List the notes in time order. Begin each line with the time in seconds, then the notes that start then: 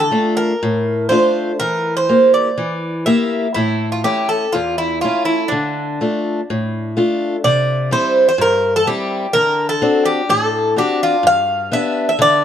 Already playing: D3
0.00 A4
0.11 A3 D4 F4
0.37 A#4
0.63 A2
1.09 A3 D4 F4 C5
1.60 E3 A#4
1.97 C5
2.09 A#3 E4 G4
2.34 D5
2.58 E3
3.06 A#3 E4 G4 E5
3.54 A2 E4
3.92 F4
4.04 A3 C#4 E4 G4
4.29 A4
4.53 E2 F4
4.78 E4
5.01 A3 C#4 E4 F4
5.25 E4
5.48 D3 D4
6.01 A3 D4 F4
6.50 A2
6.97 A3 D4 F4
7.44 C3 D5
7.91 G3 C4 E4 C5
8.28 C5
8.38 G2 A#4
8.76 A4
8.87 G3 C4 E4 G4
9.33 D3 A#4
9.69 A4
9.82 C4 D4 F#4
10.05 G4
10.29 A2 A4
10.76 C4 D4 F#4 G4
11.03 F4
11.23 G2 F5
11.72 B3 D4 G4 E5
12.09 E5
12.19 D3 D5